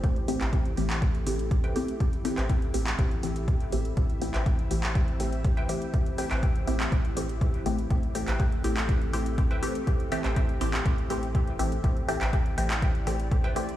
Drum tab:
HH |xxoxxxoxxxoxxxox|xxoxxxoxxxoxxxox|xxoxxxoxxxoxxxox|xxoxxxoxxxoxxxox|
CP |---x---x--------|---x---x--------|---x---x--------|---x---x--------|
BD |o---o---o---o---|o---o---o---o---|o---o---o---o---|o---o---o---o---|

HH |xxoxxxoxxxoxxxox|xxoxxxoxxxoxxxox|xxoxxxoxxxoxxxox|
CP |---x---x--------|---x---x--------|---x---x--------|
BD |o---o---o---o---|o---o---o---o---|o---o---o---o---|